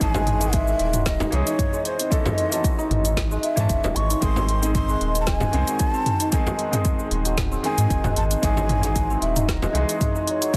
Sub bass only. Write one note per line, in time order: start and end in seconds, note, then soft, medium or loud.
0.01 0.74 G#1 loud
0.80 1.27 D#1 medium
1.33 1.43 C2 loud
2.90 3.37 G#1 medium
3.57 3.66 G#2 medium
3.70 3.80 F#1 medium
3.84 3.92 D#1 medium
3.96 4.15 G#1 loud
4.22 4.96 G#1 loud
5.01 5.48 D#1 medium
5.53 5.64 C2 medium
7.11 7.58 D#1 medium
7.78 7.87 G#2 medium
7.90 8.01 F#1 medium
8.05 8.13 D#1 medium
8.16 8.36 G#1 loud
8.43 9.16 G#1 loud
9.22 9.69 D#1 medium
9.74 9.85 C2 medium